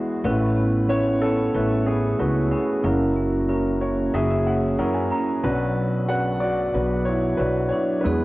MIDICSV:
0, 0, Header, 1, 4, 480
1, 0, Start_track
1, 0, Key_signature, 3, "major"
1, 0, Tempo, 650759
1, 178, Time_signature, 4, 2, 24, 8
1, 6082, End_track
2, 0, Start_track
2, 0, Title_t, "Upright piano"
2, 0, Program_c, 0, 0
2, 0, Control_c, 0, 64, 127
2, 0, Note_on_c, 0, 40, 47
2, 0, Note_on_c, 0, 52, 46
2, 0, Note_on_c, 0, 56, 63
2, 0, Note_on_c, 0, 59, 58
2, 0, Note_on_c, 0, 64, 59
2, 0, Note_on_c, 0, 66, 73
2, 0, Note_on_c, 0, 68, 70
2, 0, Note_on_c, 0, 71, 56
2, 77, Note_off_c, 0, 56, 0
2, 79, Note_off_c, 0, 59, 0
2, 79, Note_off_c, 0, 64, 0
2, 80, Note_off_c, 0, 66, 0
2, 149, Note_off_c, 0, 40, 0
2, 149, Note_off_c, 0, 52, 0
2, 178, Note_on_c, 0, 45, 60
2, 179, Note_on_c, 0, 57, 68
2, 179, Note_on_c, 0, 61, 61
2, 179, Note_on_c, 0, 64, 64
2, 181, Note_on_c, 0, 33, 61
2, 183, Note_off_c, 0, 71, 0
2, 183, Note_on_c, 0, 71, 80
2, 188, Control_c, 0, 64, 0
2, 195, Note_off_c, 0, 68, 0
2, 305, Control_c, 0, 64, 127
2, 559, Note_off_c, 0, 57, 0
2, 559, Note_off_c, 0, 61, 0
2, 559, Note_off_c, 0, 64, 0
2, 561, Note_off_c, 0, 71, 0
2, 653, Note_on_c, 0, 57, 56
2, 655, Note_on_c, 0, 64, 51
2, 656, Note_on_c, 0, 61, 54
2, 656, Note_on_c, 0, 71, 62
2, 660, Note_on_c, 0, 73, 88
2, 883, Note_off_c, 0, 73, 0
2, 892, Note_off_c, 0, 61, 0
2, 897, Note_on_c, 0, 69, 89
2, 903, Note_on_c, 0, 61, 64
2, 1036, Note_off_c, 0, 57, 0
2, 1037, Note_off_c, 0, 64, 0
2, 1038, Note_off_c, 0, 71, 0
2, 1128, Note_off_c, 0, 61, 0
2, 1138, Note_on_c, 0, 57, 58
2, 1139, Note_on_c, 0, 61, 53
2, 1142, Note_on_c, 0, 64, 53
2, 1145, Note_on_c, 0, 71, 66
2, 1375, Note_on_c, 0, 68, 74
2, 1383, Note_on_c, 0, 59, 57
2, 1392, Note_off_c, 0, 69, 0
2, 1518, Note_off_c, 0, 57, 0
2, 1519, Note_off_c, 0, 61, 0
2, 1521, Note_off_c, 0, 64, 0
2, 1522, Note_off_c, 0, 71, 0
2, 1600, Note_off_c, 0, 68, 0
2, 1604, Note_off_c, 0, 59, 0
2, 1614, Note_on_c, 0, 66, 67
2, 1617, Note_on_c, 0, 57, 61
2, 1617, Note_on_c, 0, 61, 56
2, 1622, Note_on_c, 0, 64, 55
2, 1622, Note_on_c, 0, 71, 65
2, 1853, Note_on_c, 0, 68, 70
2, 1864, Note_off_c, 0, 66, 0
2, 1870, Note_on_c, 0, 59, 53
2, 1998, Note_off_c, 0, 57, 0
2, 1998, Note_off_c, 0, 61, 0
2, 2001, Note_off_c, 0, 64, 0
2, 2001, Note_off_c, 0, 71, 0
2, 2069, Note_off_c, 0, 45, 0
2, 2071, Note_off_c, 0, 33, 0
2, 2087, Note_on_c, 0, 66, 69
2, 2088, Note_off_c, 0, 59, 0
2, 2096, Note_on_c, 0, 61, 52
2, 2097, Note_on_c, 0, 30, 54
2, 2097, Note_on_c, 0, 54, 60
2, 2098, Note_on_c, 0, 64, 54
2, 2100, Note_on_c, 0, 42, 51
2, 2100, Note_on_c, 0, 58, 51
2, 2101, Note_on_c, 0, 70, 68
2, 2103, Note_off_c, 0, 68, 0
2, 2110, Control_c, 0, 64, 0
2, 2250, Control_c, 0, 64, 127
2, 2478, Note_off_c, 0, 54, 0
2, 2478, Note_off_c, 0, 61, 0
2, 2478, Note_off_c, 0, 64, 0
2, 2480, Note_off_c, 0, 70, 0
2, 2570, Note_on_c, 0, 54, 57
2, 2571, Note_on_c, 0, 61, 50
2, 2572, Note_on_c, 0, 64, 52
2, 2574, Note_on_c, 0, 70, 63
2, 2810, Note_on_c, 0, 73, 58
2, 2954, Note_off_c, 0, 54, 0
2, 2955, Note_off_c, 0, 61, 0
2, 2955, Note_off_c, 0, 64, 0
2, 2956, Note_off_c, 0, 70, 0
2, 3023, Note_off_c, 0, 66, 0
2, 3029, Note_off_c, 0, 58, 0
2, 3037, Note_off_c, 0, 73, 0
2, 3052, Note_on_c, 0, 54, 71
2, 3053, Note_on_c, 0, 61, 68
2, 3053, Note_on_c, 0, 76, 62
2, 3055, Note_on_c, 0, 64, 67
2, 3057, Note_on_c, 0, 68, 79
2, 3163, Note_off_c, 0, 76, 0
2, 3174, Note_on_c, 0, 76, 59
2, 3288, Note_off_c, 0, 76, 0
2, 3293, Note_on_c, 0, 78, 56
2, 3435, Note_off_c, 0, 54, 0
2, 3435, Note_off_c, 0, 61, 0
2, 3437, Note_off_c, 0, 64, 0
2, 3438, Note_off_c, 0, 68, 0
2, 3519, Note_off_c, 0, 78, 0
2, 3528, Note_on_c, 0, 54, 71
2, 3529, Note_on_c, 0, 61, 69
2, 3529, Note_on_c, 0, 64, 67
2, 3530, Note_on_c, 0, 78, 57
2, 3534, Note_on_c, 0, 70, 82
2, 3645, Note_off_c, 0, 78, 0
2, 3645, Note_on_c, 0, 80, 58
2, 3763, Note_off_c, 0, 80, 0
2, 3769, Note_on_c, 0, 82, 61
2, 3913, Note_off_c, 0, 54, 0
2, 3914, Note_off_c, 0, 61, 0
2, 3914, Note_off_c, 0, 64, 0
2, 3916, Note_off_c, 0, 70, 0
2, 3987, Note_off_c, 0, 30, 0
2, 3989, Note_off_c, 0, 42, 0
2, 3997, Note_off_c, 0, 82, 0
2, 4007, Note_on_c, 0, 54, 75
2, 4008, Note_on_c, 0, 47, 63
2, 4009, Note_on_c, 0, 35, 64
2, 4009, Note_on_c, 0, 61, 67
2, 4009, Note_on_c, 0, 62, 65
2, 4012, Note_on_c, 0, 71, 83
2, 4026, Control_c, 0, 64, 0
2, 4154, Control_c, 0, 64, 127
2, 4393, Note_off_c, 0, 54, 0
2, 4393, Note_off_c, 0, 61, 0
2, 4394, Note_off_c, 0, 62, 0
2, 4395, Note_off_c, 0, 71, 0
2, 4486, Note_on_c, 0, 54, 54
2, 4489, Note_on_c, 0, 61, 52
2, 4489, Note_on_c, 0, 78, 89
2, 4491, Note_on_c, 0, 62, 53
2, 4496, Note_on_c, 0, 71, 64
2, 4716, Note_off_c, 0, 78, 0
2, 4722, Note_on_c, 0, 74, 82
2, 4740, Note_on_c, 0, 66, 62
2, 4872, Note_off_c, 0, 54, 0
2, 4873, Note_off_c, 0, 61, 0
2, 4874, Note_off_c, 0, 62, 0
2, 4877, Note_off_c, 0, 71, 0
2, 4973, Note_on_c, 0, 54, 60
2, 4974, Note_on_c, 0, 59, 56
2, 4977, Note_on_c, 0, 71, 67
2, 4979, Note_on_c, 0, 62, 54
2, 5189, Note_off_c, 0, 66, 0
2, 5200, Note_on_c, 0, 73, 72
2, 5224, Note_off_c, 0, 74, 0
2, 5228, Note_on_c, 0, 64, 59
2, 5355, Note_off_c, 0, 54, 0
2, 5356, Note_off_c, 0, 59, 0
2, 5357, Note_off_c, 0, 71, 0
2, 5358, Note_off_c, 0, 62, 0
2, 5436, Note_on_c, 0, 71, 73
2, 5439, Note_off_c, 0, 73, 0
2, 5446, Note_off_c, 0, 64, 0
2, 5449, Note_on_c, 0, 54, 62
2, 5450, Note_on_c, 0, 73, 55
2, 5452, Note_on_c, 0, 62, 60
2, 5659, Note_off_c, 0, 73, 0
2, 5670, Note_on_c, 0, 73, 70
2, 5694, Note_off_c, 0, 71, 0
2, 5704, Note_on_c, 0, 64, 54
2, 5833, Note_off_c, 0, 54, 0
2, 5835, Note_off_c, 0, 62, 0
2, 5903, Note_off_c, 0, 35, 0
2, 5903, Note_off_c, 0, 47, 0
2, 5907, Note_on_c, 0, 71, 68
2, 5920, Note_off_c, 0, 64, 0
2, 5924, Note_off_c, 0, 71, 0
2, 5928, Note_on_c, 0, 59, 55
2, 5929, Note_on_c, 0, 56, 59
2, 5930, Note_on_c, 0, 52, 52
2, 5931, Note_off_c, 0, 73, 0
2, 5931, Note_on_c, 0, 40, 53
2, 5932, Note_on_c, 0, 64, 56
2, 5935, Note_on_c, 0, 71, 69
2, 5945, Control_c, 0, 64, 0
2, 6082, Note_off_c, 0, 40, 0
2, 6082, Note_off_c, 0, 52, 0
2, 6082, Note_off_c, 0, 56, 0
2, 6082, Note_off_c, 0, 59, 0
2, 6082, Note_off_c, 0, 64, 0
2, 6082, Note_off_c, 0, 71, 0
2, 6082, End_track
3, 0, Start_track
3, 0, Title_t, "Vibraphone"
3, 0, Program_c, 1, 11
3, 182, Note_on_c, 1, 64, 64
3, 185, Note_on_c, 1, 61, 58
3, 417, Note_on_c, 1, 59, 50
3, 650, Note_off_c, 1, 61, 0
3, 658, Note_on_c, 1, 61, 58
3, 893, Note_off_c, 1, 59, 0
3, 902, Note_on_c, 1, 59, 49
3, 1132, Note_off_c, 1, 64, 0
3, 1141, Note_on_c, 1, 64, 51
3, 1371, Note_off_c, 1, 59, 0
3, 1380, Note_on_c, 1, 59, 47
3, 1610, Note_off_c, 1, 64, 0
3, 1619, Note_on_c, 1, 64, 49
3, 1847, Note_off_c, 1, 61, 0
3, 1856, Note_on_c, 1, 61, 50
3, 2084, Note_off_c, 1, 64, 0
3, 2089, Note_off_c, 1, 61, 0
3, 2093, Note_on_c, 1, 64, 65
3, 2098, Note_on_c, 1, 61, 57
3, 2147, Note_off_c, 1, 59, 0
3, 2334, Note_on_c, 1, 58, 49
3, 2565, Note_off_c, 1, 61, 0
3, 2574, Note_on_c, 1, 61, 57
3, 2807, Note_off_c, 1, 58, 0
3, 2816, Note_on_c, 1, 58, 49
3, 3043, Note_off_c, 1, 64, 0
3, 3052, Note_on_c, 1, 64, 50
3, 3286, Note_off_c, 1, 58, 0
3, 3295, Note_on_c, 1, 58, 49
3, 3523, Note_off_c, 1, 64, 0
3, 3531, Note_on_c, 1, 64, 53
3, 3760, Note_off_c, 1, 61, 0
3, 3768, Note_on_c, 1, 61, 52
3, 4012, Note_on_c, 1, 54, 66
3, 4013, Note_off_c, 1, 61, 0
3, 4015, Note_off_c, 1, 64, 0
3, 4064, Note_off_c, 1, 58, 0
3, 4962, Note_off_c, 1, 54, 0
3, 4971, Note_on_c, 1, 54, 55
3, 5447, Note_off_c, 1, 54, 0
3, 5456, Note_on_c, 1, 54, 52
3, 5698, Note_on_c, 1, 62, 49
3, 5939, Note_on_c, 1, 59, 68
3, 5944, Note_on_c, 1, 68, 58
3, 5985, Note_off_c, 1, 54, 0
3, 5986, Note_off_c, 1, 62, 0
3, 6082, Note_off_c, 1, 59, 0
3, 6082, Note_off_c, 1, 68, 0
3, 6082, End_track
4, 0, Start_track
4, 0, Title_t, "Upright bass"
4, 0, Program_c, 2, 32
4, 178, Note_on_c, 2, 33, 89
4, 1109, Note_off_c, 2, 33, 0
4, 1139, Note_on_c, 2, 33, 78
4, 1593, Note_off_c, 2, 33, 0
4, 1621, Note_on_c, 2, 37, 73
4, 1847, Note_off_c, 2, 37, 0
4, 2095, Note_on_c, 2, 30, 88
4, 3027, Note_off_c, 2, 30, 0
4, 3054, Note_on_c, 2, 30, 78
4, 3510, Note_off_c, 2, 30, 0
4, 3531, Note_on_c, 2, 42, 75
4, 3761, Note_off_c, 2, 42, 0
4, 4011, Note_on_c, 2, 35, 90
4, 4944, Note_off_c, 2, 35, 0
4, 4974, Note_on_c, 2, 35, 80
4, 5430, Note_off_c, 2, 35, 0
4, 5452, Note_on_c, 2, 35, 76
4, 5682, Note_off_c, 2, 35, 0
4, 5939, Note_on_c, 2, 40, 89
4, 6082, Note_off_c, 2, 40, 0
4, 6082, End_track
0, 0, End_of_file